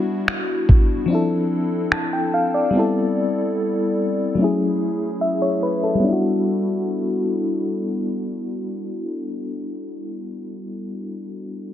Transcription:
Already playing: G3 B3 D4 E4 F#4
0.28 finger snap
0.69 kick
1.06 F3 C4
1.10 D4 E4
1.15 A4
1.92 A5, finger snap
2.13 G5
2.34 F5
2.54 D5
2.71 G3 B3
2.75 C4 E4
2.79 A4
4.35 F#3 A3
4.39 C#4 E4
4.44 G#4
5.21 E5
5.42 C#5
5.63 B4
5.84 A4
5.95 G3
5.99 B3
6.04 D4
6.08 E4
6.13 F#4

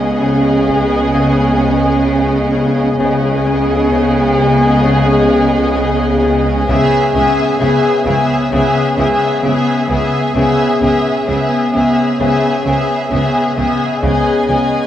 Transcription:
Already playing: C#2 C#3 B3 C#4 G#4 D#5
0.21 C#3
0.68 C#3, taiko
1.14 C#3
1.61 C#3
2.08 C#3
2.54 C#3
3.00 C#2 C#3 B3 G#4 D#5
3.46 C#4
3.92 C#3
4.39 C#3
4.84 C#3
5.30 C#3
5.76 C#3
6.23 C#3
6.68 C#2 C#3 B3 G#4 E5, taiko
7.14 C#2 C#3 B3 C#4 G#4 E5
7.60 C#2 C#3 B3 G#4 E5
8.05 C#2 C#3 B3 G#4 E5, taiko
8.51 C#2 C#3 B3 G#4 E5
8.96 C#2 C#3 B3 G#4 E5
9.43 C#2 C#3 B3 G#4 E5
9.88 C#2 C#3 B3 G#4 E5
10.35 C#2 C#3 B3 G#4 E5
10.82 C#2 C#3 B3 C#4 G#4 E5
11.27 C#2 C#3 B3 G#4 E5
11.73 C#2 C#3 B3 G#4 E5
12.19 C#2 C#3 B3 G#4 E5
12.65 C#2 C#3 B3 G#4 E5
13.10 C#2 C#3 B3 G#4 E5
13.57 C#2 C#3 B3 G#4 E5
14.02 C#2 C#3 B3 G#4 D#5 G#5, taiko
14.48 C#2 C#3 B3 C#4 G#4 D#5

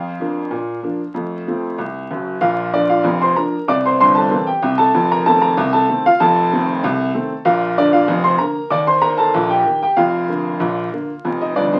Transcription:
Already playing: F2 F4 F5
0.20 F3 A#3 D4
0.51 A#2
0.83 F3 A#3 D4
1.14 F2 A3
1.47 F3 A3 C4
1.78 C2
2.11 F#1 F#2
2.41 A#1 A#2 F4 F5
2.74 F3 A#3 D4 D5
2.90 F4 F5
3.04 F1 F2
3.22 C5 C6
3.36 F3 A#3 D4 A#4 A#5
3.68 C2 C3 D5 D6
3.86 C5 C6
4.00 G1 G2 C5 C6
4.15 A4 A5
4.31 E3 A#3 C4
4.47 G4 G5
4.62 C2 C3
4.78 A4 A5
4.94 F1 F2
5.12 A#4 A#5
5.26 D#3 A3 C4 A4 A5
5.42 A#4 A#5
5.57 C2 C3
5.73 A4 A5
5.88 D#3 A3 C4
6.06 F4 F5
6.20 F1 F2 A4 A5
6.52 D#3 A3 C4
6.84 C2 C3
7.14 D#3 A3 C4
7.45 A#1 A#2 F4 F5
7.78 D3 A#3 D4 D5
7.93 F4 F5
8.08 F1 F2
8.24 C5 C6
8.38 D3 A#3 A#4 A#5
8.70 D#2 D#3 D5 D6
8.87 C5 C6
9.02 D#3 A#3 A#4 A#5
9.18 A4 A5
9.34 A#1 A#2
9.50 G4 G5
9.65 D#3 A#3
9.83 G4 G5
9.97 F1 F2 F4 F5
10.28 D3 A#3
10.60 A#1 A#2
10.92 D3 A#3
11.25 F1 F2
11.42 D#4 D#5
11.56 G1 G2 D4 D5
11.73 C4 C5

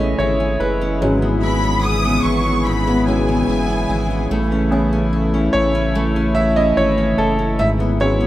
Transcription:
Already playing: A1 C#3 E3 G#3 A3 B3 C#4 E4 G#4 C#5 D#5 E5
0.00 C#4
0.19 G#1 E4 C#5
0.40 C#4
0.60 F#1 E4 B4
0.81 C#4
1.01 G#1 G#2 C#3 F#3 G#3 B3 C#4
1.22 B3
1.42 E4 B5
1.64 B3
1.84 E4 D#6
2.05 B3
2.23 G#1 E4 C#6
2.46 B3
2.66 G#2 B5
2.87 B3
3.07 F#3 G#3 C#4 E4 G#5
3.29 B3
3.48 F#1 E4
3.70 B3
3.89 G#1 E4
4.11 B3
4.30 A1 A3 E4
4.52 C#4
4.71 B3 C#4 E4 G#4
4.93 C#4
5.13 E4
5.34 C#4
5.53 A1 E4 C#5
5.75 C#4
5.95 A3
6.16 C#4
6.35 E4 E5
6.56 C#4 D#5
6.77 G#1 E4 C#5
6.98 C#4
7.18 F#1 E4 A4
7.39 C#4
7.59 G#1 G#2 C#3 B3 E4 E5
7.80 B3
8.00 F#3 G#3 C#4 E4 C#5
8.21 B3

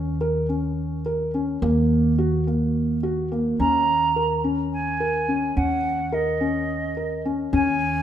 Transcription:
Already playing: D#2 C#4
0.21 A#4
0.49 C#4
1.06 A#4
1.34 C#4
1.62 D#2 A#3
2.18 F#4
2.47 A#3
3.03 F#4
3.32 A#3
3.59 D#2 C#4 A#5
4.16 A#4
4.44 C#4
4.72 G#5
5.00 A#4
5.28 C#4
5.56 D#2 C#4 F#5
6.12 A#4 D#5
6.41 C#4
6.97 A#4
7.25 C#4
7.53 D#2 C#4 G#5

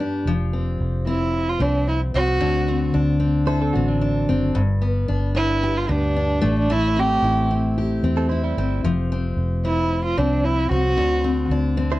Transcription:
Already playing: G2 B3 G4
0.00 D4
0.26 F1 F3
0.53 C4
0.80 F1
1.07 C4 E4
1.49 F4
1.60 C2 C4 D4
1.88 E4
2.14 C2 C4 F#4
2.40 D2 D3
2.68 C4
2.94 D2 D4
3.20 C4
3.47 E4 A4 C5
3.62 C4 A4
3.73 A1 A3 C4 F#4
3.88 F#3 D4
4.01 D4
4.29 F#1 C4
4.55 G1 G2
4.82 B3
5.09 G1 D4
5.35 B3 E4
5.63 G4
5.78 F4
5.89 D2 B3 D4
6.17 D4
6.42 A1 A3
6.59 D4
6.70 A3 E4
6.97 C4 G4
7.23 A1 E4
7.51 C4
7.78 G4
8.03 E2 C4
8.17 C4 A4
8.29 E4 C5
8.44 G3 E4
8.57 G1 C4
8.84 F1 F3
9.12 C4
9.37 F1
9.65 C4 E4
10.05 F4
10.17 C2 C4 D4
10.44 E4
10.70 C2 C4 F#4
10.97 D2 D3
11.24 C4
11.50 D2 D4
11.77 C4
11.91 E4 C5

